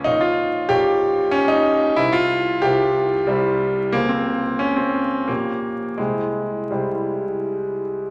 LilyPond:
\new Staff \with { instrumentName = "Grand piano" } { \time 3/4 \key c \phrygian \tempo 4 = 90 << { <bes,, bes' des'' f''>4 <bes,, bes' des'' f''>2 | <c, bes' c'' e''>4 <c, bes' c'' e''>4 <c, bes' c'' e''>4 | <des, aes' c'' f''>2 <bes,, g' des'' g''>4 | <c, e' c'' g''>4 <c, e' c'' g''>2 | } \\ { ees'16 f'8. g'4 des'16 ees'8. | e'16 f'8. g'4 g4 | bes16 c'8. des'16 c'8. bes4 | aes4 g4. r8 | } >> }